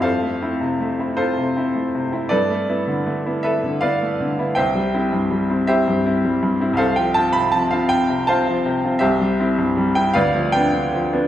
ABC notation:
X:1
M:6/8
L:1/16
Q:3/8=53
K:C
V:1 name="Grand piano"
[Acf]6 [FAc]6 | [ABd]6 [ABe]2 [Bdf]4 | [ceg]6 [Gce]6 | [Acf] g a b a f g2 [cfa]4 |
[Gce]4- [Gce] g [Bdf]2 g4 |]
V:2 name="Grand piano"
F,, A, [CE] C, A, [CE]2 C, [CE] A, C, [CE] | G,, A, [B,E] D, A, [B,E]2 D, [B,E] A, D, [B,E] | C,, G, [CE] G,, G, [CE]2 G,, [CE] G, G,, [CE] | C,, F, [CF] C, F, [CF]2 C, [CF] F, C, [CF] |
C,, G, [CE] G,, G, [CE] D,, F, [B,D] D, F, [B,D] |]